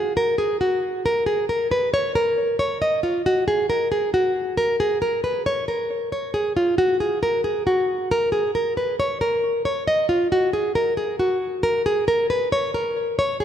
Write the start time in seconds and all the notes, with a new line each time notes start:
Already playing: G#4
0.17 A#4
0.38 G#4
0.61 F#4
1.06 A#4
1.26 G#4
1.49 A#4
1.71 B4
1.94 C#5
2.15 A#4
2.59 C#5
2.82 D#5
3.03 F4
3.26 F#4
3.48 G#4
3.70 A#4
3.92 G#4
4.14 F#4
4.57 A#4
4.80 G#4
5.02 A#4
5.24 B4
5.46 C#5
5.68 A#4
6.12 C#5
6.34 G#4
6.57 F4
6.78 F#4
7.00 G#4
7.23 A#4
7.44 G#4
7.67 F#4
8.11 A#4
8.32 G#4
8.55 A#4
8.77 B4
9.00 C#5
9.21 A#4
9.65 C#5
9.87 D#5
10.09 F4
10.32 F#4
10.53 G#4
10.75 A#4
10.97 G#4
11.19 F#4
11.63 A#4
11.86 G#4
12.08 A#4
12.30 B4
12.52 C#5
12.74 A#4
13.19 C#5
13.40 G#4